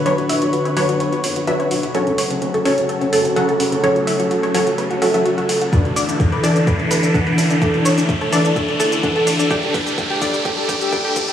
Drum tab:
HH |xxoxxxoxxxoxxxox|xxoxxxoxxxoxxxox|xxoxxxoxxxoxxxox|xxoxxxoxxxoxxxox|
SH |----------------|----------------|----------------|x-xxx-xxx-xxx-xx|
BD |----------------|----------------|----------------|o---o---o---o---|

HH |xxoxxxoxxxoxxxox|xxoxxxoxxxoxxxox|
SH |x-xxx-xxx-xxx-xx|x-xxx-xxx-xxx-xx|
BD |o---o---o---o---|o-o-o-o-o-o-o-o-|